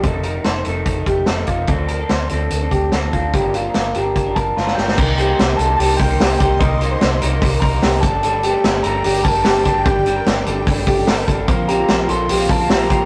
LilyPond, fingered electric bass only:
\new Staff \with { instrumentName = "Fingered electric bass" } { \clef bass \time 4/4 \key c \dorian \tempo 4 = 147 f,,4 f,,8 f,,8 f,,8 f,,8 f,,8 f,,8 | d,4 d,8 d,8 d,8 d,8 d,8 d,8 | g,,4 g,,8 g,,8 g,,8 g,,8 g,,8 g,,8 | c,4 c,8 c,8 c,8 c,8 c,8 c,8 |
c,4 c,8 c,8 c,8 c,8 c,8 g,,8~ | g,,4 g,,8 g,,8 g,,8 g,,8 g,,8 g,,8 | g,,4 g,,8 g,,8 g,,8 g,,8 g,,8 g,,8 | bes,,4 bes,,8 bes,,8 bes,,8 bes,,8 bes,,8 bes,,8 | }